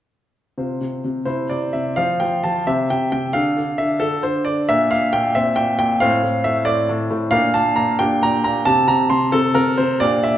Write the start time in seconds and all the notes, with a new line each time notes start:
0.58 C3 F4 C5
0.81 C3
1.04 C3
1.25 C3 E4 C5
1.50 C3 D5
1.73 C3 E5
1.96 F3 F4 C5 F5
2.20 F3 G5
2.44 F3 A5
2.67 C3 G4 C5 E5
2.90 C3 G5
3.12 C3 G5
3.33 D3 D4 A4 F5
3.57 D3
3.78 D3 E5
4.00 D3 A4
4.23 D3 C5
4.45 D3 D5
4.69 A#2 D4 A#4 E5
4.91 A#2 F5
5.13 A#2 G5
5.35 A#2 C4 C5 E5
5.56 A#2 G5
5.79 A#2 G5
6.00 A2 C4 C5 F5
6.23 A2
6.44 A2 E5
6.65 A2 D5
6.89 A2
7.11 A2
7.31 A#2 D4 A#4 F5
7.54 A#2 A5
7.76 A#2 A#5
7.99 A#2 D4 G4 G5
8.23 A#2 A#5
8.44 A#2 A#5
8.65 C3 C4 G4 A5
8.88 C3 A#5
9.10 C3 C6
9.32 C3 C4 A4
9.55 C3 A#4
9.78 C3 C5
10.00 A#2 D4 G4 D5
10.23 A#2 E5